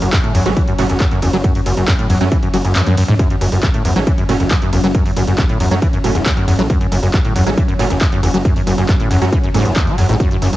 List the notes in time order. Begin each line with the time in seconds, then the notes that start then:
Already playing: F#3 C#4
0.02 F#1 F#2, open hi-hat
0.13 F#2, kick, clap, closed hi-hat, ride
0.24 A2, closed hi-hat
0.35 E2 F#2, open hi-hat, ride
0.46 G#1 F#3 A3 C#4, closed hi-hat
0.57 E3, kick, closed hi-hat, ride
0.68 F#2, closed hi-hat
0.79 F#1 A2 F#3 A3 C#4, open hi-hat, ride
0.89 F#1 E2, closed hi-hat
1.00 F#2, kick, clap, closed hi-hat, ride
1.11 F#2, closed hi-hat
1.22 F#1 E2, open hi-hat, ride
1.33 F#1 F#3, closed hi-hat
1.44 F#2, kick, closed hi-hat
1.55 F#2, open hi-hat
1.66 F#1 F#2, open hi-hat, ride
1.77 F#1 F#2, closed hi-hat
1.88 F#2, kick, clap, closed hi-hat
1.99 A2, closed hi-hat
2.10 E2 F#2, open hi-hat, ride
2.21 F#2 F#3 A3 C#4, closed hi-hat
2.32 E3, kick, closed hi-hat, ride
2.43 F#2, closed hi-hat
2.54 F#1 F#3, open hi-hat, ride
2.65 F#1 F#2, closed hi-hat
2.76 F#2, clap, closed hi-hat, high tom, ride
2.87 F#2, closed hi-hat, high tom
2.97 F#2, open hi-hat, ride
3.08 G#2, closed hi-hat, mid tom
3.19 F#2 F#3 C#4, kick, closed hi-hat, ride
3.30 F#2, closed hi-hat
3.41 F#1 F#2, open hi-hat, ride
3.52 F#1 F#2, open hi-hat
3.63 F#2, kick, clap, closed hi-hat, ride
3.74 A2, closed hi-hat
3.85 E2 F#2, open hi-hat, ride
3.96 G#1 F#3 A3 C#4, closed hi-hat
4.07 E3, kick, closed hi-hat, ride
4.18 F#2, closed hi-hat
4.29 F#1 A2 F#3 A3 C#4, open hi-hat, ride
4.40 F#1 E2, closed hi-hat
4.51 F#2, kick, clap, closed hi-hat
4.62 F#2, closed hi-hat
4.73 F#1 E2, open hi-hat, ride
4.84 F#1 F#3, closed hi-hat
4.95 F#2, kick, closed hi-hat, ride
5.06 F#2, open hi-hat
5.16 F#1 F#2, open hi-hat, ride
5.27 F#1 F#2, closed hi-hat
5.38 F#2, kick, clap, closed hi-hat, ride
5.49 A2, closed hi-hat
5.60 E2 F#2, open hi-hat, ride
5.71 F#2 F#3 A3 C#4, closed hi-hat
5.82 E3, kick, closed hi-hat, ride
5.93 F#2, closed hi-hat
6.04 F#1 A2 F#3 A3 C#4, open hi-hat, ride
6.15 E1 E2, closed hi-hat
6.26 F#2, kick, clap, closed hi-hat, ride
6.37 F#2, closed hi-hat
6.48 E2 F#2, open hi-hat, ride
6.59 A1 F#3, closed hi-hat
6.70 F#2, kick, closed hi-hat, ride
6.81 F#2, closed hi-hat
6.92 F#1 F#2, open hi-hat, ride
7.03 F#1 F#2, open hi-hat
7.14 F#2, kick, clap, closed hi-hat, ride
7.25 A2, closed hi-hat
7.35 E2 F#2, open hi-hat, ride
7.46 G#1 F#3 A3 C#4, closed hi-hat
7.57 E3, kick, closed hi-hat, ride
7.68 F#2, closed hi-hat
7.79 F#1 A2 F#3 A3 C#4, open hi-hat, ride
7.90 F#1 E2, closed hi-hat
8.01 F#2, kick, clap, closed hi-hat
8.12 F#2, closed hi-hat
8.23 F#1 E2, open hi-hat, ride
8.34 F#1 F#3, closed hi-hat
8.45 F#2, kick, closed hi-hat, ride
8.56 F#2, open hi-hat
8.67 F#1 F#2, open hi-hat, ride
8.78 F#1 F#2, closed hi-hat
8.89 F#2, kick, clap, closed hi-hat, ride
9.00 A2, closed hi-hat
9.11 E2 F#2, open hi-hat, ride
9.22 F#2 F#3 A3 C#4, closed hi-hat
9.33 E3, kick, closed hi-hat, ride
9.44 F#2, closed hi-hat
9.54 F#1 G#2 F#3 A3 C#4, open hi-hat, ride
9.65 E1 F#2, closed hi-hat
9.76 E2, kick, clap, closed hi-hat, ride
9.87 F#3, closed hi-hat
9.98 E2 F#2, open hi-hat, ride
10.09 G#1 A2, closed hi-hat
10.20 F#2, kick, closed hi-hat, ride
10.31 F#2, closed hi-hat
10.42 F#1 F#2, open hi-hat, ride
10.53 F#1 F#2, open hi-hat